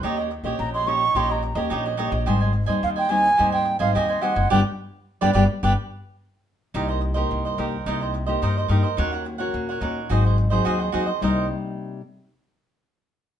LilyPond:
<<
  \new Staff \with { instrumentName = "Flute" } { \time 4/4 \key c \minor \tempo 4 = 107 r4 bes''16 c'''16 des'''8 c'''16 bes''8 r4 r16 | r4 f''16 g''16 aes''8. g''8 f''16 ees''8 fis''8 | g''16 r4 g''16 g''16 r16 g''16 r4. r16 | r1 |
r1 | r1 | }
  \new Staff \with { instrumentName = "Cavaquinho" } { \time 4/4 \key c \minor <ees' g' des'' ees''>16 <g' des'' ees''>16 r16 <g' des'' ees''>8 <g' des'' ees''>16 <ees' g' des'' ees''>8 <ees' g' des'' ees''>16 <g' des'' ees''>16 r16 <g' des'' ees''>16 <ees' g' des'' ees''>16 <g' des'' ees''>16 <ees' g' des'' ees''>16 <g' des'' ees''>16 | <g' c'' ees'' aes''>16 <c'' ees'' aes''>16 r16 <c'' ees'' aes''>8 <c'' ees'' aes''>16 <g' c'' ees'' aes''>8 <g' c'' ees'' aes''>16 <c'' ees'' aes''>16 r16 <c'' ees'' aes''>16 <g' c'' ees'' aes''>16 <c'' ees'' aes''>16 <g' c'' ees'' aes''>16 <c'' ees'' aes''>16 | <g' b' d''>16 r4 <g' b' d''>16 <g' b' d''>16 r16 <g' b' d''>16 r4. r16 | <ees' bes' c'' ees''>16 <bes' c'' ees''>16 r16 <bes' c'' ees''>8 <bes' c'' ees''>16 <ees' bes' c'' ees''>8 <ees' bes' c'' ees''>16 <bes' c'' ees''>16 r16 <bes' c'' ees''>16 <ees' bes' c'' ees''>16 <bes' c'' ees''>16 <ees' bes' c'' ees''>16 <bes' c'' ees''>16 |
<ees' bes' des'' ges''>16 <bes' des'' ges''>16 r16 <bes' des'' ges''>8 <bes' des'' ges''>16 <ees' bes' des'' ges''>8 <ges' aes' c'' ees''>16 <aes' c'' ees''>16 r16 <aes' c'' ees''>16 <ges' aes' c'' ees''>16 <aes' c'' ees''>16 <ges' aes' c'' ees''>16 <aes' c'' ees''>16 | <ees' bes' c'' ees''>8 r2. r8 | }
  \new Staff \with { instrumentName = "Nylon-string guitar" } { \time 4/4 \key c \minor << { <bes des' g'>8 r16 <bes des' g'>8. <bes des' g'>16 r16 <bes des' g'>8. <bes des' g'>8. <bes des' g'>16 r16 | <g c' ees'>8 r16 <g c' ees'>8. <g c' ees'>16 r16 <g c' ees'>8. <g c' ees'>8. <g c' ees'>8 | <g b d'>16 r4 <g b d'>16 <g b d'>16 r16 <g b d'>16 r4. r16 | <bes ees' g'>8. <bes ees' g'>8. <bes ees' g'>16 r16 <bes ees' g'>8. <bes ees' g'>8. <bes ees' g'>16 r16 |
<bes des' ges'>8. <bes des' ges'>8. <bes des' ges'>16 r16 <ges c' ees'>8. <ges c' ees'>8. <ges c' ees'>16 r16 | <c g bes ees'>8 r2. r8 | } \\ { ees4 bes,4 ees4 bes,4 | aes,4 ees4 aes,4 ees4 | r1 | c4 g,4 c4 g,4 |
ees4 bes,4 aes,4 ees4 | r1 | } >> }
  \new Staff \with { instrumentName = "Upright bass" } { \clef bass \time 4/4 \key c \minor ees,8. bes,,16 bes,,4 bes,,8. ees,16 bes,,8. bes,,16 | aes,,8. ees,16 ees,4 ees,8. aes,,16 ees,8. fis,,16 | g,,16 r4 g,,16 g,,16 r16 g,,16 r4. r16 | c,4 c,8 c,8 c,4 g,8 g,16 r16 |
ees,4 ees,8 ees,8 aes,,4 ees,8 ees,16 r16 | c,8 r2. r8 | }
>>